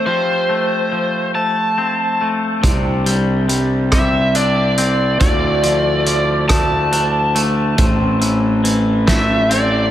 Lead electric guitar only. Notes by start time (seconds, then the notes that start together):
0.06 C5
1.35 A5
3.94 E5
4.36 D5
5.20 D5
6.48 A5
9.08 E5
9.52 D5